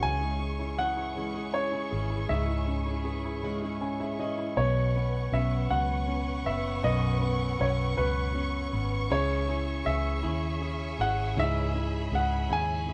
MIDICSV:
0, 0, Header, 1, 6, 480
1, 0, Start_track
1, 0, Tempo, 755668
1, 21, Time_signature, 6, 3, 24, 8
1, 8215, End_track
2, 0, Start_track
2, 0, Title_t, "Grand piano"
2, 0, Program_c, 0, 0
2, 17, Note_on_c, 0, 80, 95
2, 499, Note_on_c, 0, 78, 98
2, 514, Note_off_c, 0, 80, 0
2, 976, Note_on_c, 0, 73, 90
2, 995, Note_off_c, 0, 78, 0
2, 1456, Note_on_c, 0, 76, 79
2, 1474, Note_off_c, 0, 73, 0
2, 2634, Note_off_c, 0, 76, 0
2, 2903, Note_on_c, 0, 73, 86
2, 3389, Note_on_c, 0, 76, 77
2, 3397, Note_off_c, 0, 73, 0
2, 3624, Note_on_c, 0, 78, 81
2, 3633, Note_off_c, 0, 76, 0
2, 4105, Note_on_c, 0, 76, 80
2, 4117, Note_off_c, 0, 78, 0
2, 4327, Note_off_c, 0, 76, 0
2, 4345, Note_on_c, 0, 75, 82
2, 4833, Note_on_c, 0, 73, 72
2, 4838, Note_off_c, 0, 75, 0
2, 4886, Note_off_c, 0, 73, 0
2, 5065, Note_on_c, 0, 71, 80
2, 5578, Note_off_c, 0, 71, 0
2, 5791, Note_on_c, 0, 73, 92
2, 6241, Note_off_c, 0, 73, 0
2, 6263, Note_on_c, 0, 76, 88
2, 6957, Note_off_c, 0, 76, 0
2, 6993, Note_on_c, 0, 78, 89
2, 7234, Note_off_c, 0, 78, 0
2, 7238, Note_on_c, 0, 76, 96
2, 7719, Note_on_c, 0, 78, 84
2, 7724, Note_off_c, 0, 76, 0
2, 7957, Note_off_c, 0, 78, 0
2, 7957, Note_on_c, 0, 80, 92
2, 8215, Note_off_c, 0, 80, 0
2, 8215, End_track
3, 0, Start_track
3, 0, Title_t, "String section"
3, 0, Program_c, 1, 48
3, 0, Note_on_c, 1, 73, 55
3, 0, Note_on_c, 1, 85, 61
3, 9, Note_on_c, 1, 64, 57
3, 10, Note_on_c, 1, 68, 60
3, 2871, Note_off_c, 1, 64, 0
3, 2872, Note_off_c, 1, 68, 0
3, 2879, Note_off_c, 1, 73, 0
3, 2880, Note_off_c, 1, 85, 0
3, 2903, Note_on_c, 1, 71, 64
3, 2907, Note_on_c, 1, 78, 62
3, 2908, Note_on_c, 1, 73, 65
3, 2908, Note_on_c, 1, 85, 79
3, 5756, Note_off_c, 1, 71, 0
3, 5759, Note_off_c, 1, 78, 0
3, 5778, Note_on_c, 1, 68, 71
3, 5782, Note_on_c, 1, 76, 66
3, 7198, Note_off_c, 1, 85, 0
3, 7220, Note_on_c, 1, 83, 74
3, 8215, Note_off_c, 1, 68, 0
3, 8215, Note_off_c, 1, 73, 0
3, 8215, Note_off_c, 1, 76, 0
3, 8215, Note_off_c, 1, 83, 0
3, 8215, End_track
4, 0, Start_track
4, 0, Title_t, "Grand piano"
4, 0, Program_c, 2, 0
4, 0, Control_c, 2, 64, 127
4, 12, Note_on_c, 2, 49, 59
4, 29, Control_c, 2, 64, 0
4, 139, Note_on_c, 2, 56, 45
4, 154, Control_c, 2, 64, 127
4, 251, Note_on_c, 2, 61, 47
4, 375, Note_on_c, 2, 64, 50
4, 491, Note_on_c, 2, 68, 53
4, 605, Note_off_c, 2, 64, 0
4, 615, Note_on_c, 2, 64, 54
4, 724, Note_off_c, 2, 56, 0
4, 734, Note_on_c, 2, 56, 59
4, 842, Note_off_c, 2, 68, 0
4, 852, Note_on_c, 2, 68, 43
4, 966, Note_off_c, 2, 61, 0
4, 976, Note_on_c, 2, 61, 49
4, 1081, Note_off_c, 2, 64, 0
4, 1091, Note_on_c, 2, 64, 47
4, 1204, Note_off_c, 2, 68, 0
4, 1213, Note_on_c, 2, 68, 55
4, 1324, Note_off_c, 2, 64, 0
4, 1334, Note_on_c, 2, 64, 54
4, 1432, Note_off_c, 2, 49, 0
4, 1454, Note_on_c, 2, 44, 58
4, 1564, Note_off_c, 2, 56, 0
4, 1574, Note_on_c, 2, 56, 47
4, 1687, Note_off_c, 2, 61, 0
4, 1696, Note_on_c, 2, 61, 53
4, 1805, Note_off_c, 2, 64, 0
4, 1815, Note_on_c, 2, 64, 53
4, 1925, Note_off_c, 2, 68, 0
4, 1935, Note_on_c, 2, 68, 53
4, 2051, Note_off_c, 2, 64, 0
4, 2061, Note_on_c, 2, 64, 53
4, 2171, Note_off_c, 2, 56, 0
4, 2180, Note_on_c, 2, 56, 63
4, 2296, Note_off_c, 2, 68, 0
4, 2306, Note_on_c, 2, 68, 47
4, 2412, Note_off_c, 2, 61, 0
4, 2421, Note_on_c, 2, 61, 50
4, 2421, Note_on_c, 2, 80, 58
4, 2532, Note_off_c, 2, 64, 0
4, 2534, Note_off_c, 2, 80, 0
4, 2541, Note_on_c, 2, 64, 52
4, 2543, Note_on_c, 2, 76, 62
4, 2654, Note_off_c, 2, 68, 0
4, 2654, Note_off_c, 2, 76, 0
4, 2664, Note_on_c, 2, 68, 53
4, 2665, Note_on_c, 2, 75, 64
4, 2771, Note_off_c, 2, 64, 0
4, 2781, Note_on_c, 2, 64, 54
4, 2873, Note_off_c, 2, 44, 0
4, 2880, Note_off_c, 2, 56, 0
4, 2887, Note_off_c, 2, 75, 0
4, 2888, Note_off_c, 2, 61, 0
4, 2896, Note_off_c, 2, 68, 0
4, 2898, Note_off_c, 2, 64, 0
4, 2904, Note_on_c, 2, 47, 63
4, 2910, Control_c, 2, 64, 0
4, 3011, Control_c, 2, 64, 127
4, 3148, Note_on_c, 2, 59, 50
4, 3384, Note_on_c, 2, 61, 49
4, 3614, Note_off_c, 2, 59, 0
4, 3623, Note_on_c, 2, 59, 53
4, 3852, Note_off_c, 2, 61, 0
4, 3861, Note_on_c, 2, 61, 53
4, 4094, Note_off_c, 2, 59, 0
4, 4104, Note_on_c, 2, 59, 51
4, 4318, Note_off_c, 2, 47, 0
4, 4338, Note_on_c, 2, 42, 67
4, 4566, Note_off_c, 2, 59, 0
4, 4575, Note_on_c, 2, 59, 55
4, 4796, Note_off_c, 2, 61, 0
4, 4827, Note_on_c, 2, 61, 53
4, 5054, Note_off_c, 2, 59, 0
4, 5064, Note_on_c, 2, 59, 57
4, 5294, Note_off_c, 2, 61, 0
4, 5303, Note_on_c, 2, 61, 55
4, 5531, Note_off_c, 2, 59, 0
4, 5541, Note_on_c, 2, 59, 54
4, 5754, Note_off_c, 2, 42, 0
4, 5768, Note_off_c, 2, 61, 0
4, 5774, Note_off_c, 2, 59, 0
4, 5788, Note_on_c, 2, 49, 69
4, 5791, Control_c, 2, 64, 0
4, 5918, Control_c, 2, 64, 127
4, 6026, Note_on_c, 2, 64, 56
4, 6256, Note_on_c, 2, 68, 52
4, 6488, Note_off_c, 2, 64, 0
4, 6497, Note_on_c, 2, 64, 60
4, 6728, Note_off_c, 2, 68, 0
4, 6737, Note_on_c, 2, 68, 54
4, 6978, Note_off_c, 2, 64, 0
4, 6987, Note_on_c, 2, 64, 57
4, 7199, Note_off_c, 2, 49, 0
4, 7226, Note_on_c, 2, 44, 68
4, 7456, Note_off_c, 2, 64, 0
4, 7466, Note_on_c, 2, 64, 55
4, 7673, Note_off_c, 2, 68, 0
4, 7702, Note_on_c, 2, 68, 53
4, 7931, Note_off_c, 2, 64, 0
4, 7941, Note_on_c, 2, 64, 57
4, 8175, Note_off_c, 2, 68, 0
4, 8184, Note_on_c, 2, 68, 52
4, 8215, Note_off_c, 2, 44, 0
4, 8215, Note_off_c, 2, 64, 0
4, 8215, Note_off_c, 2, 68, 0
4, 8215, End_track
5, 0, Start_track
5, 0, Title_t, "Steel-string acoustic guitar"
5, 0, Program_c, 3, 25
5, 14, Note_on_c, 3, 49, 67
5, 16, Note_on_c, 3, 52, 68
5, 20, Note_on_c, 3, 61, 73
5, 22, Note_on_c, 3, 64, 74
5, 22, Note_on_c, 3, 68, 77
5, 128, Note_off_c, 3, 68, 0
5, 135, Note_on_c, 3, 68, 46
5, 136, Note_off_c, 3, 64, 0
5, 138, Note_off_c, 3, 49, 0
5, 138, Note_off_c, 3, 52, 0
5, 141, Note_off_c, 3, 61, 0
5, 144, Note_on_c, 3, 64, 40
5, 150, Note_on_c, 3, 61, 37
5, 369, Note_off_c, 3, 68, 0
5, 376, Note_off_c, 3, 64, 0
5, 376, Note_on_c, 3, 68, 42
5, 383, Note_off_c, 3, 61, 0
5, 384, Note_on_c, 3, 64, 40
5, 390, Note_on_c, 3, 61, 36
5, 497, Note_off_c, 3, 61, 0
5, 499, Note_off_c, 3, 68, 0
5, 500, Note_on_c, 3, 52, 49
5, 501, Note_off_c, 3, 64, 0
5, 505, Note_on_c, 3, 61, 57
5, 509, Note_on_c, 3, 64, 56
5, 513, Note_on_c, 3, 68, 61
5, 733, Note_off_c, 3, 52, 0
5, 735, Note_off_c, 3, 61, 0
5, 738, Note_off_c, 3, 64, 0
5, 739, Note_on_c, 3, 49, 65
5, 740, Note_off_c, 3, 68, 0
5, 740, Note_on_c, 3, 52, 65
5, 743, Note_on_c, 3, 61, 74
5, 745, Note_on_c, 3, 64, 66
5, 747, Note_on_c, 3, 68, 71
5, 854, Note_off_c, 3, 68, 0
5, 860, Note_off_c, 3, 49, 0
5, 860, Note_off_c, 3, 64, 0
5, 861, Note_off_c, 3, 52, 0
5, 861, Note_on_c, 3, 68, 56
5, 863, Note_off_c, 3, 61, 0
5, 867, Note_on_c, 3, 64, 46
5, 874, Note_on_c, 3, 61, 44
5, 1094, Note_off_c, 3, 68, 0
5, 1102, Note_off_c, 3, 64, 0
5, 1102, Note_on_c, 3, 68, 45
5, 1108, Note_off_c, 3, 61, 0
5, 1110, Note_on_c, 3, 64, 42
5, 1115, Note_on_c, 3, 61, 36
5, 1217, Note_off_c, 3, 61, 0
5, 1219, Note_off_c, 3, 64, 0
5, 1219, Note_on_c, 3, 52, 58
5, 1222, Note_off_c, 3, 68, 0
5, 1224, Note_on_c, 3, 61, 54
5, 1227, Note_on_c, 3, 64, 57
5, 1232, Note_on_c, 3, 68, 59
5, 1452, Note_off_c, 3, 52, 0
5, 1455, Note_off_c, 3, 61, 0
5, 1456, Note_off_c, 3, 64, 0
5, 1458, Note_on_c, 3, 49, 66
5, 1460, Note_off_c, 3, 68, 0
5, 1460, Note_on_c, 3, 52, 70
5, 1463, Note_on_c, 3, 61, 77
5, 1464, Note_on_c, 3, 64, 71
5, 1467, Note_on_c, 3, 68, 82
5, 1569, Note_off_c, 3, 68, 0
5, 1575, Note_off_c, 3, 64, 0
5, 1576, Note_on_c, 3, 68, 48
5, 1580, Note_off_c, 3, 49, 0
5, 1581, Note_off_c, 3, 52, 0
5, 1581, Note_off_c, 3, 61, 0
5, 1583, Note_on_c, 3, 64, 43
5, 1589, Note_on_c, 3, 61, 38
5, 1811, Note_off_c, 3, 68, 0
5, 1818, Note_off_c, 3, 64, 0
5, 1818, Note_on_c, 3, 68, 47
5, 1823, Note_off_c, 3, 61, 0
5, 1825, Note_on_c, 3, 64, 40
5, 1830, Note_on_c, 3, 61, 38
5, 1935, Note_off_c, 3, 61, 0
5, 1938, Note_on_c, 3, 52, 46
5, 1940, Note_off_c, 3, 64, 0
5, 1940, Note_off_c, 3, 68, 0
5, 1942, Note_on_c, 3, 61, 60
5, 1947, Note_on_c, 3, 64, 54
5, 1951, Note_on_c, 3, 68, 57
5, 2176, Note_off_c, 3, 52, 0
5, 2179, Note_off_c, 3, 61, 0
5, 2179, Note_on_c, 3, 49, 78
5, 2180, Note_off_c, 3, 64, 0
5, 2181, Note_off_c, 3, 68, 0
5, 2183, Note_on_c, 3, 52, 72
5, 2186, Note_on_c, 3, 61, 85
5, 2188, Note_on_c, 3, 64, 89
5, 2189, Note_on_c, 3, 68, 86
5, 2295, Note_off_c, 3, 68, 0
5, 2301, Note_off_c, 3, 49, 0
5, 2301, Note_off_c, 3, 64, 0
5, 2303, Note_off_c, 3, 52, 0
5, 2303, Note_on_c, 3, 68, 56
5, 2304, Note_off_c, 3, 61, 0
5, 2308, Note_on_c, 3, 64, 54
5, 2315, Note_on_c, 3, 61, 53
5, 2533, Note_off_c, 3, 68, 0
5, 2539, Note_off_c, 3, 64, 0
5, 2540, Note_on_c, 3, 68, 47
5, 2546, Note_off_c, 3, 61, 0
5, 2546, Note_on_c, 3, 64, 47
5, 2554, Note_on_c, 3, 61, 39
5, 2656, Note_off_c, 3, 61, 0
5, 2658, Note_on_c, 3, 52, 58
5, 2660, Note_off_c, 3, 64, 0
5, 2661, Note_off_c, 3, 68, 0
5, 2664, Note_on_c, 3, 61, 64
5, 2668, Note_on_c, 3, 64, 63
5, 2673, Note_on_c, 3, 68, 69
5, 2897, Note_off_c, 3, 52, 0
5, 2897, Note_on_c, 3, 47, 74
5, 2898, Note_off_c, 3, 61, 0
5, 2900, Note_on_c, 3, 54, 73
5, 2903, Note_off_c, 3, 64, 0
5, 2903, Note_on_c, 3, 59, 81
5, 2904, Note_off_c, 3, 68, 0
5, 2905, Note_on_c, 3, 61, 80
5, 2907, Note_on_c, 3, 71, 75
5, 3133, Note_off_c, 3, 71, 0
5, 3140, Note_off_c, 3, 47, 0
5, 3141, Note_off_c, 3, 54, 0
5, 3141, Note_off_c, 3, 61, 0
5, 3141, Note_on_c, 3, 71, 53
5, 3143, Note_off_c, 3, 59, 0
5, 3149, Note_on_c, 3, 61, 47
5, 3154, Note_on_c, 3, 59, 40
5, 3375, Note_off_c, 3, 59, 0
5, 3378, Note_on_c, 3, 54, 59
5, 3382, Note_off_c, 3, 61, 0
5, 3382, Note_off_c, 3, 71, 0
5, 3383, Note_on_c, 3, 59, 62
5, 3390, Note_on_c, 3, 61, 65
5, 3392, Note_on_c, 3, 71, 65
5, 3613, Note_off_c, 3, 71, 0
5, 3616, Note_off_c, 3, 61, 0
5, 3618, Note_off_c, 3, 59, 0
5, 3620, Note_off_c, 3, 54, 0
5, 3621, Note_on_c, 3, 71, 66
5, 3624, Note_on_c, 3, 61, 57
5, 3625, Note_on_c, 3, 59, 53
5, 3628, Note_on_c, 3, 54, 55
5, 3631, Note_on_c, 3, 47, 54
5, 3853, Note_off_c, 3, 54, 0
5, 3857, Note_off_c, 3, 59, 0
5, 3861, Note_off_c, 3, 61, 0
5, 3861, Note_on_c, 3, 54, 59
5, 3862, Note_off_c, 3, 71, 0
5, 3865, Note_on_c, 3, 59, 56
5, 3867, Note_off_c, 3, 47, 0
5, 3869, Note_on_c, 3, 61, 61
5, 3872, Note_on_c, 3, 71, 63
5, 4091, Note_off_c, 3, 71, 0
5, 4099, Note_off_c, 3, 61, 0
5, 4099, Note_on_c, 3, 71, 47
5, 4102, Note_off_c, 3, 54, 0
5, 4104, Note_off_c, 3, 59, 0
5, 4107, Note_on_c, 3, 61, 45
5, 4110, Note_on_c, 3, 59, 39
5, 4337, Note_off_c, 3, 59, 0
5, 4339, Note_on_c, 3, 47, 69
5, 4340, Note_off_c, 3, 61, 0
5, 4341, Note_off_c, 3, 71, 0
5, 4342, Note_on_c, 3, 54, 77
5, 4344, Note_on_c, 3, 59, 78
5, 4348, Note_on_c, 3, 61, 73
5, 4348, Note_on_c, 3, 71, 80
5, 4570, Note_off_c, 3, 71, 0
5, 4577, Note_off_c, 3, 61, 0
5, 4577, Note_on_c, 3, 71, 51
5, 4581, Note_off_c, 3, 47, 0
5, 4582, Note_off_c, 3, 54, 0
5, 4583, Note_off_c, 3, 59, 0
5, 4585, Note_on_c, 3, 61, 49
5, 4591, Note_on_c, 3, 59, 43
5, 4819, Note_off_c, 3, 59, 0
5, 4820, Note_off_c, 3, 71, 0
5, 4821, Note_on_c, 3, 54, 56
5, 4824, Note_off_c, 3, 61, 0
5, 4826, Note_on_c, 3, 59, 58
5, 4831, Note_on_c, 3, 61, 54
5, 4835, Note_on_c, 3, 71, 67
5, 5051, Note_off_c, 3, 71, 0
5, 5054, Note_off_c, 3, 61, 0
5, 5055, Note_off_c, 3, 59, 0
5, 5058, Note_off_c, 3, 54, 0
5, 5059, Note_on_c, 3, 71, 62
5, 5062, Note_on_c, 3, 61, 62
5, 5063, Note_on_c, 3, 59, 53
5, 5066, Note_on_c, 3, 54, 59
5, 5067, Note_on_c, 3, 47, 59
5, 5289, Note_off_c, 3, 54, 0
5, 5294, Note_off_c, 3, 59, 0
5, 5297, Note_on_c, 3, 54, 59
5, 5300, Note_off_c, 3, 61, 0
5, 5300, Note_off_c, 3, 71, 0
5, 5302, Note_on_c, 3, 59, 57
5, 5304, Note_off_c, 3, 47, 0
5, 5307, Note_on_c, 3, 61, 67
5, 5310, Note_on_c, 3, 71, 61
5, 5530, Note_off_c, 3, 71, 0
5, 5537, Note_off_c, 3, 61, 0
5, 5537, Note_on_c, 3, 71, 50
5, 5539, Note_off_c, 3, 54, 0
5, 5542, Note_off_c, 3, 59, 0
5, 5545, Note_on_c, 3, 61, 48
5, 5551, Note_on_c, 3, 59, 42
5, 5773, Note_off_c, 3, 61, 0
5, 5776, Note_on_c, 3, 49, 70
5, 5778, Note_off_c, 3, 59, 0
5, 5779, Note_off_c, 3, 71, 0
5, 5779, Note_on_c, 3, 52, 75
5, 5780, Note_on_c, 3, 61, 79
5, 5782, Note_on_c, 3, 64, 78
5, 5787, Note_on_c, 3, 68, 86
5, 6010, Note_off_c, 3, 68, 0
5, 6018, Note_off_c, 3, 64, 0
5, 6018, Note_on_c, 3, 68, 55
5, 6019, Note_off_c, 3, 49, 0
5, 6020, Note_off_c, 3, 52, 0
5, 6021, Note_off_c, 3, 61, 0
5, 6025, Note_on_c, 3, 64, 50
5, 6030, Note_on_c, 3, 61, 43
5, 6253, Note_off_c, 3, 61, 0
5, 6254, Note_on_c, 3, 52, 60
5, 6257, Note_off_c, 3, 64, 0
5, 6260, Note_off_c, 3, 68, 0
5, 6261, Note_on_c, 3, 61, 55
5, 6265, Note_on_c, 3, 64, 66
5, 6269, Note_on_c, 3, 68, 64
5, 6491, Note_off_c, 3, 68, 0
5, 6494, Note_off_c, 3, 64, 0
5, 6496, Note_off_c, 3, 61, 0
5, 6498, Note_off_c, 3, 52, 0
5, 6498, Note_on_c, 3, 68, 65
5, 6501, Note_on_c, 3, 64, 68
5, 6504, Note_on_c, 3, 61, 61
5, 6506, Note_on_c, 3, 49, 56
5, 6735, Note_off_c, 3, 61, 0
5, 6739, Note_off_c, 3, 64, 0
5, 6740, Note_off_c, 3, 68, 0
5, 6743, Note_on_c, 3, 61, 66
5, 6744, Note_off_c, 3, 49, 0
5, 6747, Note_on_c, 3, 64, 62
5, 6750, Note_on_c, 3, 68, 65
5, 6973, Note_off_c, 3, 68, 0
5, 6979, Note_off_c, 3, 64, 0
5, 6980, Note_on_c, 3, 68, 50
5, 6982, Note_off_c, 3, 61, 0
5, 6987, Note_on_c, 3, 64, 47
5, 6992, Note_on_c, 3, 61, 43
5, 7213, Note_off_c, 3, 61, 0
5, 7216, Note_off_c, 3, 64, 0
5, 7216, Note_on_c, 3, 49, 77
5, 7218, Note_on_c, 3, 52, 82
5, 7219, Note_off_c, 3, 68, 0
5, 7221, Note_on_c, 3, 61, 76
5, 7224, Note_on_c, 3, 64, 78
5, 7226, Note_on_c, 3, 68, 88
5, 7450, Note_off_c, 3, 68, 0
5, 7458, Note_on_c, 3, 68, 53
5, 7459, Note_off_c, 3, 49, 0
5, 7459, Note_off_c, 3, 52, 0
5, 7459, Note_off_c, 3, 64, 0
5, 7461, Note_off_c, 3, 61, 0
5, 7466, Note_on_c, 3, 64, 50
5, 7473, Note_on_c, 3, 61, 45
5, 7696, Note_off_c, 3, 61, 0
5, 7696, Note_on_c, 3, 52, 59
5, 7698, Note_off_c, 3, 64, 0
5, 7699, Note_off_c, 3, 68, 0
5, 7704, Note_on_c, 3, 61, 58
5, 7706, Note_on_c, 3, 64, 62
5, 7709, Note_on_c, 3, 68, 67
5, 7931, Note_off_c, 3, 68, 0
5, 7934, Note_off_c, 3, 64, 0
5, 7936, Note_off_c, 3, 61, 0
5, 7938, Note_off_c, 3, 52, 0
5, 7939, Note_on_c, 3, 68, 61
5, 7942, Note_on_c, 3, 64, 68
5, 7943, Note_on_c, 3, 61, 58
5, 7949, Note_on_c, 3, 49, 50
5, 8174, Note_off_c, 3, 61, 0
5, 8179, Note_off_c, 3, 64, 0
5, 8180, Note_off_c, 3, 68, 0
5, 8181, Note_on_c, 3, 61, 54
5, 8185, Note_off_c, 3, 49, 0
5, 8186, Note_on_c, 3, 64, 57
5, 8188, Note_on_c, 3, 68, 63
5, 8215, Note_off_c, 3, 61, 0
5, 8215, Note_off_c, 3, 64, 0
5, 8215, Note_off_c, 3, 68, 0
5, 8215, End_track
6, 0, Start_track
6, 0, Title_t, "Fingered electric bass"
6, 0, Program_c, 4, 33
6, 22, Note_on_c, 4, 37, 86
6, 1197, Note_off_c, 4, 37, 0
6, 1223, Note_on_c, 4, 32, 73
6, 1448, Note_off_c, 4, 32, 0
6, 1462, Note_on_c, 4, 37, 87
6, 2663, Note_off_c, 4, 37, 0
6, 2663, Note_on_c, 4, 30, 72
6, 2889, Note_off_c, 4, 30, 0
6, 2903, Note_on_c, 4, 35, 101
6, 3357, Note_off_c, 4, 35, 0
6, 3383, Note_on_c, 4, 35, 86
6, 3608, Note_off_c, 4, 35, 0
6, 3628, Note_on_c, 4, 37, 86
6, 4080, Note_off_c, 4, 37, 0
6, 4106, Note_on_c, 4, 30, 86
6, 4330, Note_off_c, 4, 30, 0
6, 4346, Note_on_c, 4, 35, 105
6, 4799, Note_off_c, 4, 35, 0
6, 4829, Note_on_c, 4, 35, 81
6, 5051, Note_off_c, 4, 35, 0
6, 5068, Note_on_c, 4, 37, 84
6, 5520, Note_off_c, 4, 37, 0
6, 5546, Note_on_c, 4, 32, 77
6, 5769, Note_off_c, 4, 32, 0
6, 5788, Note_on_c, 4, 37, 96
6, 6239, Note_off_c, 4, 37, 0
6, 6266, Note_on_c, 4, 37, 78
6, 6490, Note_off_c, 4, 37, 0
6, 6508, Note_on_c, 4, 39, 82
6, 6959, Note_off_c, 4, 39, 0
6, 6982, Note_on_c, 4, 32, 76
6, 7207, Note_off_c, 4, 32, 0
6, 7221, Note_on_c, 4, 37, 104
6, 7675, Note_off_c, 4, 37, 0
6, 7699, Note_on_c, 4, 37, 85
6, 7925, Note_off_c, 4, 37, 0
6, 7941, Note_on_c, 4, 39, 80
6, 8215, Note_off_c, 4, 39, 0
6, 8215, End_track
0, 0, End_of_file